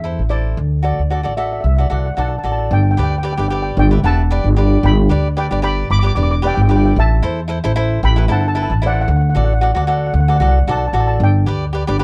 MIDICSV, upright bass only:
0, 0, Header, 1, 2, 480
1, 0, Start_track
1, 0, Key_signature, 1, "major"
1, 0, Tempo, 531444
1, 527, Time_signature, 4, 2, 24, 8
1, 10873, End_track
2, 0, Start_track
2, 0, Title_t, "Upright bass"
2, 0, Program_c, 0, 32
2, 0, Note_on_c, 0, 40, 83
2, 137, Note_off_c, 0, 40, 0
2, 170, Note_on_c, 0, 33, 68
2, 480, Note_off_c, 0, 33, 0
2, 517, Note_on_c, 0, 38, 94
2, 843, Note_off_c, 0, 38, 0
2, 894, Note_on_c, 0, 38, 74
2, 1105, Note_off_c, 0, 38, 0
2, 1134, Note_on_c, 0, 33, 66
2, 1443, Note_off_c, 0, 33, 0
2, 1480, Note_on_c, 0, 36, 91
2, 1694, Note_off_c, 0, 36, 0
2, 1727, Note_on_c, 0, 36, 65
2, 1945, Note_off_c, 0, 36, 0
2, 1963, Note_on_c, 0, 35, 74
2, 2183, Note_off_c, 0, 35, 0
2, 2200, Note_on_c, 0, 33, 72
2, 2422, Note_off_c, 0, 33, 0
2, 2445, Note_on_c, 0, 31, 95
2, 2657, Note_off_c, 0, 31, 0
2, 2690, Note_on_c, 0, 38, 77
2, 3012, Note_off_c, 0, 38, 0
2, 3053, Note_on_c, 0, 31, 75
2, 3363, Note_off_c, 0, 31, 0
2, 3403, Note_on_c, 0, 31, 97
2, 3616, Note_off_c, 0, 31, 0
2, 3642, Note_on_c, 0, 28, 81
2, 3968, Note_off_c, 0, 28, 0
2, 4011, Note_on_c, 0, 31, 85
2, 4322, Note_off_c, 0, 31, 0
2, 4364, Note_on_c, 0, 31, 101
2, 4577, Note_off_c, 0, 31, 0
2, 4608, Note_on_c, 0, 38, 84
2, 4930, Note_off_c, 0, 38, 0
2, 4973, Note_on_c, 0, 31, 73
2, 5283, Note_off_c, 0, 31, 0
2, 5329, Note_on_c, 0, 31, 91
2, 5539, Note_off_c, 0, 31, 0
2, 5568, Note_on_c, 0, 28, 87
2, 5890, Note_off_c, 0, 28, 0
2, 5933, Note_on_c, 0, 31, 93
2, 6242, Note_off_c, 0, 31, 0
2, 6289, Note_on_c, 0, 33, 99
2, 6499, Note_off_c, 0, 33, 0
2, 6528, Note_on_c, 0, 40, 86
2, 6850, Note_off_c, 0, 40, 0
2, 6902, Note_on_c, 0, 33, 86
2, 7207, Note_off_c, 0, 33, 0
2, 7251, Note_on_c, 0, 33, 100
2, 7460, Note_off_c, 0, 33, 0
2, 7487, Note_on_c, 0, 31, 84
2, 7809, Note_off_c, 0, 31, 0
2, 7855, Note_on_c, 0, 33, 88
2, 8162, Note_off_c, 0, 33, 0
2, 8200, Note_on_c, 0, 38, 97
2, 8413, Note_off_c, 0, 38, 0
2, 8450, Note_on_c, 0, 33, 84
2, 8770, Note_off_c, 0, 33, 0
2, 8808, Note_on_c, 0, 38, 80
2, 9118, Note_off_c, 0, 38, 0
2, 9155, Note_on_c, 0, 38, 97
2, 9370, Note_off_c, 0, 38, 0
2, 9396, Note_on_c, 0, 36, 81
2, 9610, Note_off_c, 0, 36, 0
2, 9641, Note_on_c, 0, 35, 75
2, 9860, Note_off_c, 0, 35, 0
2, 9870, Note_on_c, 0, 33, 81
2, 10094, Note_off_c, 0, 33, 0
2, 10115, Note_on_c, 0, 31, 98
2, 10329, Note_off_c, 0, 31, 0
2, 10358, Note_on_c, 0, 38, 79
2, 10683, Note_off_c, 0, 38, 0
2, 10732, Note_on_c, 0, 31, 79
2, 10873, Note_off_c, 0, 31, 0
2, 10873, End_track
0, 0, End_of_file